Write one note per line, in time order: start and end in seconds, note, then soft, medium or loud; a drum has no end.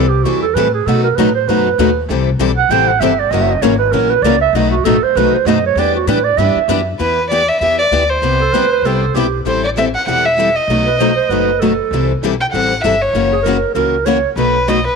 0.00 0.23 C2 medium
0.00 0.10 A4 medium
0.09 0.25 G4 medium
0.23 0.54 E2 medium
0.23 0.44 E3 medium
0.23 0.44 G3 medium
0.23 0.45 C4 medium
0.23 0.45 E4 medium
0.23 0.41 F#4 medium
0.23 0.45 A4 medium
0.42 0.56 A4 medium
0.54 0.85 A2 medium
0.54 0.67 E3 medium
0.54 0.67 G3 medium
0.54 0.67 C4 medium
0.54 0.67 E4 medium
0.54 0.67 A4 medium
0.54 0.73 B4 medium
0.74 0.87 G#4 medium
0.86 1.16 B2 medium
0.86 1.06 B2 medium
0.86 1.06 F#3 medium
0.86 1.06 A3 medium
0.86 1.06 D#4 medium
0.86 1.06 F#4 medium
0.86 1.03 A4 medium
0.86 1.07 B4 medium
1.04 1.18 A#4 medium
1.16 1.47 A2 medium
1.16 1.28 B2 medium
1.16 1.28 F#3 medium
1.16 1.28 A3 medium
1.16 1.28 D#4 medium
1.16 1.29 F#4 medium
1.16 1.34 B4 medium
1.16 1.29 B4 medium
1.34 1.49 C5 loud
1.48 1.77 F#2 medium
1.48 1.67 B2 medium
1.48 1.67 F#3 medium
1.48 1.68 A3 medium
1.48 1.68 D#4 medium
1.48 1.68 F#4 medium
1.48 2.09 B4 medium
1.48 1.68 B4 medium
1.78 2.08 D#2 medium
1.78 1.89 B2 medium
1.78 1.89 F#3 medium
1.78 1.89 A3 medium
1.78 1.89 D#4 medium
1.78 1.89 F#4 medium
1.78 1.90 B4 medium
2.09 2.39 C2 medium
2.09 2.28 C3 medium
2.09 2.28 E3 medium
2.09 2.28 G3 medium
2.09 2.29 C4 medium
2.09 2.29 E4 medium
2.09 2.29 A4 medium
2.39 2.68 B1 medium
2.39 2.50 C3 medium
2.39 2.50 E3 medium
2.39 2.50 G3 medium
2.39 2.50 C4 medium
2.39 2.50 E4 medium
2.39 2.51 A4 medium
2.57 2.72 F#5 loud
2.69 2.99 A1 medium
2.69 2.89 C3 medium
2.69 2.89 E3 medium
2.69 2.90 G3 medium
2.69 2.90 C4 medium
2.69 2.90 E4 medium
2.69 2.90 A4 medium
2.69 2.89 G5 loud
2.87 3.01 F#5 loud
3.00 3.30 G1 medium
3.00 3.11 C3 medium
3.00 3.11 E3 medium
3.00 3.11 G3 medium
3.00 3.12 C4 medium
3.00 3.12 E4 medium
3.00 3.12 A4 medium
3.00 3.21 E5 medium
3.19 3.32 D5 medium
3.31 3.61 F#1 medium
3.31 3.51 C#3 medium
3.31 3.51 E3 medium
3.31 3.51 F#3 medium
3.31 3.52 A#3 medium
3.31 3.51 C#4 medium
3.31 3.51 E4 medium
3.31 3.52 F#4 medium
3.31 3.51 A#4 medium
3.31 3.43 D#5 medium
3.41 3.52 E5 medium
3.50 3.63 D#5 medium
3.62 3.92 G#1 medium
3.62 3.73 C#3 medium
3.62 3.73 E3 medium
3.62 3.73 F#3 medium
3.62 3.73 A#3 loud
3.62 3.73 C#4 medium
3.62 3.73 E4 medium
3.62 3.73 F#4 loud
3.62 3.74 A#4 medium
3.62 3.78 C#5 medium
3.78 3.93 B4 medium
3.92 4.22 A#1 medium
3.92 4.12 C#3 medium
3.92 4.12 E3 medium
3.92 4.12 F#3 medium
3.92 4.12 A#3 medium
3.92 4.12 C#4 medium
3.92 4.12 E4 medium
3.92 4.13 F#4 medium
3.92 4.12 A#4 medium
4.10 4.24 B4 loud
4.22 4.52 C#2 medium
4.22 4.34 C#3 medium
4.22 4.35 E3 medium
4.22 4.34 F#3 medium
4.22 4.35 A#3 medium
4.22 4.35 C#4 medium
4.22 4.34 E4 medium
4.22 4.35 A#4 medium
4.22 4.41 D5 medium
4.26 4.35 F#4 medium
4.41 4.56 E5 loud
4.53 4.83 B1 medium
4.53 4.74 B2 medium
4.53 4.74 F#3 medium
4.53 4.74 A3 medium
4.53 4.74 D#4 medium
4.53 4.75 F#4 medium
4.53 4.74 B4 medium
4.53 4.70 D#5 loud
4.70 4.86 F#4 medium
4.84 5.01 A1 medium
4.84 4.96 B2 medium
4.84 4.96 F#3 medium
4.84 4.96 A3 loud
4.84 4.96 D#4 medium
4.84 4.96 F#4 medium
4.84 5.04 A4 medium
4.84 4.96 B4 medium
5.02 5.18 C5 loud
5.02 muted upright bass stroke soft
5.15 5.32 B1 medium
5.15 5.35 B2 medium
5.15 5.35 F#3 medium
5.15 5.35 A3 medium
5.15 5.35 D#4 medium
5.15 5.36 F#4 medium
5.15 5.35 B4 medium
5.33 5.48 C5 medium
5.33 muted upright bass stroke soft
5.45 5.75 F#2 medium
5.45 5.57 B2 medium
5.45 5.56 F#3 medium
5.45 5.57 A3 medium
5.45 5.57 D#4 loud
5.45 5.57 F#4 medium
5.45 5.57 B4 medium
5.45 5.64 D#5 loud
5.66 5.80 C#5 loud
5.75 6.06 E2 medium
5.75 5.96 E3 medium
5.75 5.96 G3 medium
5.75 5.97 B3 medium
5.75 5.96 D4 medium
5.75 5.96 E4 medium
5.75 5.97 G4 medium
5.75 5.97 B4 medium
5.75 5.94 D5 medium
5.95 6.09 F#4 medium
6.07 6.37 A2 medium
6.07 6.18 E3 medium
6.07 6.18 G3 medium
6.07 6.18 B3 medium
6.07 6.18 D4 loud
6.07 6.18 E4 medium
6.07 6.18 G4 medium
6.07 6.25 B4 medium
6.07 6.18 B4 medium
6.24 6.39 D5 loud
6.37 6.54 G2 medium
6.37 6.57 E3 medium
6.37 6.58 G3 medium
6.37 6.57 B3 medium
6.37 6.58 D4 medium
6.37 6.58 E4 medium
6.37 6.58 G4 medium
6.37 6.58 B4 medium
6.37 6.93 E5 medium
6.56 muted upright bass stroke soft
6.68 6.98 F#2 medium
6.68 6.80 E3 medium
6.68 6.80 G3 medium
6.68 6.79 B3 medium
6.68 6.80 D4 medium
6.68 6.80 E4 medium
6.68 6.80 G4 medium
6.68 6.80 B4 medium
6.99 7.48 E2 medium
6.99 7.19 E3 medium
6.99 7.19 B3 medium
6.99 7.19 E4 medium
6.99 7.19 G4 medium
6.99 7.28 B4 medium
6.99 7.19 B4 medium
7.30 7.41 E3 medium
7.30 7.41 B3 medium
7.30 7.41 E4 medium
7.30 7.41 G4 medium
7.30 7.41 B4 medium
7.30 7.50 D5 medium
7.49 7.61 E5 medium
7.60 7.87 E2 medium
7.60 7.80 E3 medium
7.60 7.81 B3 medium
7.60 7.81 E4 medium
7.60 7.81 G4 medium
7.60 7.81 B4 medium
7.60 7.78 E5 medium
7.79 8.11 D5 medium
7.91 8.17 D2 medium
7.91 8.02 E3 medium
7.91 8.02 B3 medium
7.91 8.03 E4 medium
7.91 8.03 G4 medium
7.91 8.03 B4 medium
8.09 9.01 C5 medium
8.22 8.46 C2 medium
8.22 8.42 C3 medium
8.22 8.42 G3 medium
8.22 8.42 B3 medium
8.22 8.42 E4 medium
8.22 8.42 G4 medium
8.40 8.55 A4 medium
8.52 8.79 D2 medium
8.52 8.63 C3 medium
8.52 8.64 G3 medium
8.52 8.64 B3 medium
8.52 8.64 E4 medium
8.52 8.64 G4 medium
8.52 8.71 B4 medium
8.72 8.87 B4 medium
8.82 9.09 C2 medium
8.82 9.03 C3 medium
8.82 9.03 G3 medium
8.82 9.04 B3 medium
8.82 9.04 E4 medium
8.82 9.04 G4 medium
8.82 9.16 A4 medium
9.14 9.40 B1 medium
9.14 9.25 C3 medium
9.14 9.25 G3 medium
9.14 9.25 B3 medium
9.14 9.25 E4 medium
9.14 9.39 G4 medium
9.14 9.25 G4 medium
9.45 9.94 A1 medium
9.45 9.64 E3 medium
9.45 9.64 G3 medium
9.45 9.65 C4 medium
9.45 9.64 E4 medium
9.45 9.65 A4 medium
9.45 9.63 C5 medium
9.64 9.70 D5 medium
9.76 9.86 E3 medium
9.76 9.87 G3 medium
9.76 9.87 C4 medium
9.76 9.87 E4 medium
9.76 9.87 A4 medium
9.76 9.85 E5 medium
9.95 10.07 F#5 medium
10.06 10.56 E1 medium
10.06 10.25 E3 medium
10.06 10.26 G3 medium
10.06 10.26 C4 medium
10.06 10.26 E4 medium
10.06 10.26 A4 medium
10.06 10.27 F#5 medium
10.26 10.57 E5 medium
10.36 10.47 E3 medium
10.36 10.48 G3 medium
10.36 10.48 C4 medium
10.36 10.48 E4 medium
10.36 10.48 A4 medium
10.56 11.48 D#5 medium
10.68 11.17 B1 medium
10.68 10.88 B2 medium
10.68 10.88 F#3 medium
10.68 10.88 A3 medium
10.68 10.88 D#4 medium
10.68 10.88 F#4 medium
10.68 10.88 B4 medium
10.86 10.98 B4 medium
10.99 11.09 B2 medium
10.99 11.10 F#3 medium
10.99 11.10 A3 medium
10.99 11.10 D#4 medium
10.99 11.10 F#4 medium
10.99 11.10 B4 medium
10.99 11.15 C5 medium
11.16 11.30 C5 medium
11.29 11.78 F#1 medium
11.29 11.49 B2 medium
11.29 11.49 F#3 medium
11.29 11.49 A3 medium
11.29 11.49 D#4 medium
11.29 11.49 F#4 medium
11.29 11.61 B4 medium
11.29 11.50 B4 medium
11.60 11.71 B2 medium
11.60 11.71 F#3 medium
11.60 11.71 A3 medium
11.60 11.71 D#4 medium
11.60 11.71 F#4 medium
11.60 12.21 A4 medium
11.60 11.72 B4 medium
11.91 12.15 C2 medium
11.91 12.11 C3 medium
11.91 12.11 E3 medium
11.91 12.11 G3 medium
11.91 12.11 C4 medium
11.91 12.11 E4 medium
11.91 12.11 A4 medium
12.22 12.48 B1 medium
12.22 12.33 C3 medium
12.22 12.33 E3 medium
12.22 12.33 G3 medium
12.22 12.33 C4 medium
12.22 12.33 E4 medium
12.22 12.33 A4 medium
12.41 12.46 G5 medium
12.53 12.79 A1 medium
12.53 12.72 C3 medium
12.53 12.72 E3 medium
12.53 12.72 G3 medium
12.53 12.72 C4 medium
12.53 12.72 E4 medium
12.53 12.72 A4 medium
12.53 12.81 F#5 medium
12.83 13.09 G1 medium
12.83 12.94 C3 medium
12.83 12.94 E3 medium
12.83 12.94 G3 medium
12.83 12.94 C4 medium
12.83 12.94 E4 medium
12.83 12.94 A4 medium
12.83 13.04 E5 medium
13.02 13.45 C#5 medium
13.13 13.63 F#1 medium
13.13 13.33 C#3 medium
13.13 13.33 E3 medium
13.13 13.33 F#3 medium
13.13 13.34 A#3 medium
13.13 13.33 C#4 medium
13.13 13.33 E4 medium
13.13 13.34 F#4 medium
13.13 13.33 A#4 medium
13.32 13.38 G#4 medium
13.42 13.56 C#3 medium
13.42 13.56 E3 medium
13.42 13.55 F#3 medium
13.42 13.55 C#4 medium
13.42 13.55 E4 medium
13.42 13.72 A#4 medium
13.42 13.55 A#4 medium
13.47 13.56 A#3 medium
13.47 13.57 F#4 medium
13.74 14.24 C#2 medium
13.74 13.94 C#3 medium
13.74 13.94 E3 medium
13.74 13.94 F#3 medium
13.74 13.95 A#3 medium
13.74 13.95 C#4 medium
13.74 13.94 E4 medium
13.74 13.95 F#4 medium
13.74 14.07 A#4 medium
13.74 13.95 A#4 medium
14.05 14.16 C#3 medium
14.05 14.17 E3 medium
14.05 14.16 F#3 medium
14.05 14.17 A#3 medium
14.05 14.16 C#4 medium
14.05 14.17 E4 medium
14.05 14.17 F#4 medium
14.05 14.17 A#4 medium
14.05 14.30 C#5 medium
14.36 14.85 B1 medium
14.36 14.56 B2 medium
14.36 14.56 F#3 medium
14.36 14.56 A3 medium
14.36 14.56 D#4 medium
14.36 14.56 F#4 medium
14.36 14.70 B4 medium
14.36 14.57 B4 medium
14.68 14.78 B2 medium
14.68 14.78 F#3 medium
14.68 14.78 A3 medium
14.68 14.78 D#4 medium
14.68 14.78 F#4 medium
14.68 14.78 B4 medium
14.68 14.86 D#5 medium
14.87 14.96 B4 medium